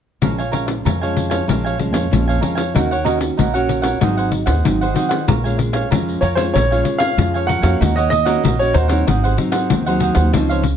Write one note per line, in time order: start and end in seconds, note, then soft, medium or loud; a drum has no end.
0.22 0.76 A#1 medium
0.22 0.82 A#2 medium
0.22 0.41 F3 soft
0.22 0.41 G#3 soft
0.22 0.41 C#4 medium
0.22 0.37 A#4 soft
0.22 0.37 C#5 soft
0.22 0.37 F5 soft
0.22 0.37 G#5 soft
0.22 pandeiro medium
0.38 0.51 C#5 soft
0.38 0.52 F5 soft
0.38 0.53 G#5 medium
0.38 pandeiro soft
0.52 0.95 F3 soft
0.52 0.95 G#3 soft
0.52 0.96 C#4 soft
0.52 0.66 A#4 medium
0.52 0.66 C#5 medium
0.52 0.66 F5 medium
0.52 0.67 G#5 medium
0.52 pandeiro medium
0.67 muted cavaquinho stroke soft
0.67 pandeiro medium
0.85 1.39 F2 medium
0.85 1.45 F2 soft
0.85 1.00 A#4 soft
0.85 1.00 C#5 soft
0.85 1.01 F5 soft
0.85 1.00 G#5 soft
0.85 pandeiro medium
1.01 1.44 F3 medium
1.01 1.44 G#3 medium
1.01 1.45 C#4 medium
1.01 1.31 C#5 soft
1.01 1.30 F5 medium
1.01 1.28 G#5 medium
1.01 pandeiro soft
1.17 pandeiro medium
1.30 1.47 C#5 soft
1.30 1.46 F5 soft
1.30 1.46 G#5 medium
1.30 pandeiro medium
1.48 1.93 A#1 medium
1.48 2.08 A#2 soft
1.48 1.75 F3 soft
1.48 1.75 G#3 soft
1.48 1.75 C#4 medium
1.48 1.63 A#4 soft
1.48 1.63 C#5 soft
1.48 1.63 F5 soft
1.48 1.63 G#5 soft
1.48 pandeiro medium
1.64 1.78 C#5 soft
1.64 1.78 F5 medium
1.64 1.79 G#5 medium
1.64 pandeiro soft
1.79 2.06 F3 medium
1.79 2.06 G#3 soft
1.79 2.07 C#4 soft
1.79 muted cavaquinho stroke soft
1.79 pandeiro soft
1.93 2.08 F2 medium
1.93 2.26 C#5 soft
1.93 2.25 F5 soft
1.93 2.25 G#5 medium
1.93 pandeiro medium
2.11 2.39 A#1 medium
2.11 2.72 F2 medium
2.11 2.38 F3 soft
2.11 2.39 G#3 soft
2.11 2.39 C#4 medium
2.11 pandeiro medium
2.28 2.41 C#5 soft
2.28 2.41 F5 medium
2.28 2.42 G#5 medium
2.28 pandeiro soft
2.41 2.63 F3 soft
2.41 2.63 G#3 medium
2.41 2.63 C#4 medium
2.41 2.57 A#4 soft
2.41 2.56 C#5 soft
2.41 2.55 F5 soft
2.41 2.54 G#5 medium
2.41 pandeiro soft
2.55 2.73 C#5 soft
2.55 2.73 F5 medium
2.55 2.72 G#5 medium
2.55 pandeiro medium
2.74 3.29 D#2 medium
2.74 3.35 D#3 medium
2.74 2.93 A#3 medium
2.74 2.94 C#4 soft
2.74 2.89 D#4 soft
2.74 2.94 F#4 medium
2.74 2.90 A#4 soft
2.74 2.90 C#5 soft
2.74 2.90 F#5 soft
2.74 pandeiro medium
2.91 3.04 A#4 soft
2.91 3.05 C#5 medium
2.91 3.05 F#5 medium
2.91 pandeiro soft
3.04 3.48 A#3 soft
3.04 3.48 C#4 soft
3.04 3.18 D#4 medium
3.04 3.48 F#4 soft
3.04 3.19 A#4 medium
3.04 3.19 C#5 medium
3.04 3.19 F#5 medium
3.04 pandeiro medium
3.20 muted cavaquinho stroke soft
3.20 pandeiro medium
3.37 3.92 A#1 medium
3.37 3.98 A#2 soft
3.37 3.52 D#4 soft
3.37 3.53 A#4 soft
3.37 3.53 C#5 soft
3.37 3.53 F#5 soft
3.37 pandeiro medium
3.54 3.97 A#3 medium
3.54 3.97 C#4 medium
3.54 3.97 F#4 medium
3.54 3.83 A#4 medium
3.54 3.82 C#5 medium
3.54 3.81 F#5 medium
3.54 pandeiro soft
3.69 pandeiro soft
3.82 4.00 A#4 soft
3.82 3.99 C#5 medium
3.82 3.99 F#5 medium
3.82 pandeiro medium
4.00 4.48 G#1 medium
4.00 4.61 G#2 medium
4.00 4.42 F#3 soft
4.00 4.42 C4 soft
4.00 4.42 D#4 medium
4.00 4.16 F#4 soft
4.00 4.16 G#4 soft
4.00 4.16 C5 soft
4.00 4.16 F#5 soft
4.00 pandeiro medium
4.17 4.31 G#4 medium
4.17 4.31 C5 medium
4.17 4.31 F#5 medium
4.17 pandeiro soft
4.31 muted cavaquinho stroke soft
4.31 pandeiro soft
4.46 4.61 D#2 medium
4.46 4.79 G#4 soft
4.46 4.78 C5 medium
4.46 4.78 F#5 medium
4.46 pandeiro medium
4.64 4.92 G#1 medium
4.64 5.25 D#3 medium
4.64 4.83 F#3 soft
4.64 4.83 C4 medium
4.64 4.84 D#4 medium
4.64 pandeiro medium
4.81 4.94 G#4 soft
4.81 4.94 C5 medium
4.81 4.96 F#5 medium
4.81 pandeiro soft
4.94 5.16 F#3 soft
4.94 5.16 C4 soft
4.94 5.16 D#4 medium
4.94 5.10 F#4 soft
4.94 5.10 G#4 soft
4.94 5.09 C5 soft
4.94 5.08 F#5 soft
4.94 pandeiro medium
5.09 5.26 G#4 soft
5.09 5.26 C5 medium
5.09 5.25 F#5 medium
5.09 pandeiro medium
5.27 5.82 A#1 medium
5.27 5.88 A#2 medium
5.27 5.37 G#3 medium
5.27 5.37 C#4 soft
5.27 5.38 F4 medium
5.27 5.43 A#4 medium
5.27 5.43 C#5 soft
5.27 5.43 F5 soft
5.27 5.43 G#5 soft
5.27 pandeiro medium
5.44 5.87 G#3 medium
5.44 5.87 C#4 medium
5.44 5.87 F4 medium
5.44 5.57 C#5 soft
5.44 5.58 F5 soft
5.44 5.58 G#5 medium
5.44 pandeiro soft
5.58 muted cavaquinho stroke soft
5.58 pandeiro medium
5.73 5.90 C#5 soft
5.73 5.89 F5 medium
5.73 5.89 G#5 medium
5.73 pandeiro medium
5.91 6.18 F2 medium
5.91 6.51 F3 soft
5.91 6.21 G#3 medium
5.91 6.21 C#4 soft
5.91 6.21 F4 medium
5.91 6.20 A#4 soft
5.91 6.21 C#5 soft
5.91 6.22 F5 soft
5.91 6.22 G#5 soft
5.91 pandeiro medium
6.09 pandeiro soft
6.21 6.49 F2 medium
6.21 6.37 A#4 medium
6.21 6.26 C#5 medium
6.21 6.37 C#5 medium
6.21 6.36 F5 medium
6.21 6.35 G#5 medium
6.21 pandeiro soft
6.35 6.64 G#3 medium
6.35 6.64 C#4 medium
6.35 6.64 F4 medium
6.35 6.40 C5 medium
6.35 6.53 C#5 soft
6.35 6.52 F5 medium
6.35 6.52 G#5 medium
6.35 pandeiro medium
6.54 6.81 A#1 medium
6.54 7.15 A#2 medium
6.54 6.69 A#4 soft
6.54 7.03 C#5 medium
6.54 6.69 C#5 soft
6.54 6.69 F5 medium
6.54 6.70 G#5 medium
6.54 pandeiro medium
6.71 7.13 G#3 medium
6.71 7.14 C#4 soft
6.71 7.14 F4 medium
6.71 6.84 C#5 medium
6.71 6.84 F5 medium
6.71 6.85 G#5 medium
6.71 pandeiro soft
6.85 muted cavaquinho stroke soft
6.85 pandeiro medium
6.98 7.32 C#5 soft
6.98 7.49 F5 loud
6.98 7.32 F5 medium
6.98 7.31 G#5 medium
6.98 pandeiro medium
7.17 7.58 F2 medium
7.17 7.78 F3 medium
7.17 7.60 G#3 soft
7.17 7.60 C#4 medium
7.17 7.61 F4 medium
7.17 pandeiro medium
7.34 7.48 C#5 medium
7.34 7.48 F5 medium
7.34 7.48 G#5 medium
7.34 pandeiro soft
7.47 7.63 A#4 soft
7.47 7.63 C#5 soft
7.47 7.62 F5 soft
7.47 7.97 F#5 medium
7.47 7.61 G#5 medium
7.47 pandeiro medium
7.62 7.77 F2 medium
7.62 7.90 A#3 medium
7.62 7.91 C#4 medium
7.62 7.91 F#4 medium
7.62 7.79 C#5 medium
7.62 7.79 F5 medium
7.62 7.78 G#5 medium
7.62 pandeiro medium
7.80 8.35 D#2 medium
7.80 8.41 D#3 medium
7.80 7.95 D#4 soft
7.80 7.96 A#4 soft
7.80 7.96 C#5 soft
7.80 7.95 F#5 medium
7.80 pandeiro medium
7.96 8.10 A#4 soft
7.96 8.10 C#5 medium
7.96 8.09 D#5 medium
7.96 8.11 F#5 medium
7.96 pandeiro soft
8.10 8.60 D#5 loud
8.10 muted cavaquinho stroke soft
8.10 pandeiro medium
8.25 8.54 A#3 medium
8.25 8.54 C#4 medium
8.25 8.54 F#4 medium
8.25 8.43 A#4 medium
8.25 8.42 C#5 medium
8.25 8.41 F#5 medium
8.25 pandeiro medium
8.43 8.71 A#1 medium
8.43 9.04 A#2 soft
8.43 8.72 D#4 soft
8.43 8.73 A#4 soft
8.43 8.74 C#5 soft
8.43 8.74 F#5 soft
8.43 pandeiro medium
8.59 8.87 A#3 medium
8.59 8.87 C#4 medium
8.59 8.87 F#4 medium
8.59 8.74 C#5 medium
8.59 pandeiro soft
8.74 9.02 D#2 medium
8.74 8.89 D#4 medium
8.74 8.89 A#4 medium
8.74 9.97 C5 medium
8.74 8.88 C#5 medium
8.74 8.87 F#5 medium
8.74 pandeiro medium
8.88 9.33 F#3 medium
8.88 9.33 C4 medium
8.88 9.33 D#4 medium
8.88 9.06 A#4 medium
8.88 9.05 C#5 medium
8.88 9.04 F#5 medium
8.88 pandeiro medium
9.07 9.35 G#1 medium
9.07 9.67 G#2 medium
9.07 9.22 F#4 soft
9.07 9.22 G#4 medium
9.07 9.22 C5 soft
9.07 9.22 F#5 medium
9.07 pandeiro medium
9.24 9.37 G#4 medium
9.24 9.37 C5 medium
9.24 9.37 F#5 medium
9.24 pandeiro soft
9.37 9.81 F#3 medium
9.37 9.81 C4 medium
9.37 9.81 D#4 medium
9.37 muted cavaquinho stroke soft
9.37 pandeiro medium
9.52 9.85 G#4 soft
9.52 9.84 C5 soft
9.52 9.84 F#5 medium
9.52 pandeiro medium
9.70 10.11 D#2 medium
9.70 10.31 D#3 medium
9.70 pandeiro medium
9.86 10.30 F#3 medium
9.86 10.30 C4 medium
9.86 10.30 D#4 medium
9.86 10.00 G#4 medium
9.86 10.00 C5 medium
9.86 10.01 F#5 medium
9.86 pandeiro soft
10.00 10.16 F#4 soft
10.00 10.15 G#4 soft
10.00 10.14 C5 medium
10.00 10.13 F#5 medium
10.00 pandeiro medium
10.14 10.30 D#2 medium
10.14 10.32 G#4 soft
10.14 10.31 C5 medium
10.14 10.31 F#5 medium
10.14 pandeiro medium
10.33 10.77 C#3 medium
10.33 10.64 F3 medium
10.33 10.64 C4 medium
10.33 10.64 D#4 medium
10.33 10.48 F4 soft
10.33 10.48 C5 soft
10.33 10.49 C#5 medium
10.33 10.48 F5 soft
10.33 pandeiro medium
10.49 10.63 C5 medium
10.49 10.63 C#5 medium
10.49 10.64 F5 medium
10.49 pandeiro soft
10.63 muted cavaquinho stroke soft
10.63 pandeiro medium